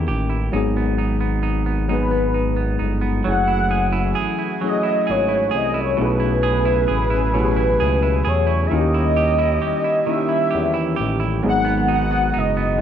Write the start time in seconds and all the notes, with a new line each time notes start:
Already playing: D#3 A#3 C#4 E4 A#4
0.08 A1 G4
0.30 E4
0.52 G#1 G#2 F#3 G#3 B3 D#4 G#4
0.77 B3
0.98 D#4
1.21 B3
1.43 D#4
1.66 B3
1.88 G#2 F#3 G#3 B3 D#4 G#4
1.92 B4
2.11 B3
2.34 D#4
2.56 B3
2.79 G1 D#4
3.01 B3
3.24 F#1 E3 F#3 A3 C#4 E4 F#4 G#4
3.29 F#5
3.48 E4
3.71 G#4
3.92 E4
4.15 G#4
4.39 E4
4.61 F#3 A3 C#4 E4
4.65 G#4 D#5
4.72 G#4
4.83 E4
5.07 G#1 G#4 C#5
5.28 E4
5.51 C2 G#4
5.57 D#5
5.74 E4
5.80 C#5
5.97 B1 B2 C#3 F#3 A3 C#4 E4 G#4
6.01 G#4 B4
6.20 E4
6.43 G#4
6.65 E4
6.88 A1 G#4
7.10 E4
7.33 B2 F#3 A3 C#4 E4 G4
7.44 G#4
7.56 E4
7.80 C#2 G#4
8.03 E4
8.25 E2 G#4 C#5
8.47 E4
8.67 D#3 G3 C#4 E4 E5
8.71 D#2 D#3 A#3 C#4 F#4 D#5
8.81 G4
8.94 E4
9.16 G4
9.39 E4
9.62 G4
9.84 E4
10.06 D#3 A#3 C#4 E4 E5
10.17 G4
10.29 E4
10.51 G4
10.55 E2
10.74 E4
10.96 A1 G4
11.20 E4
11.43 G#1 G#2 D#3 F#3 G#3 B3 D#4 F#4 G#4
11.48 F#5
11.65 B3
11.88 D#4
11.93 F#5
12.11 B3
12.34 F#1 D#4
12.38 D#5
12.57 B3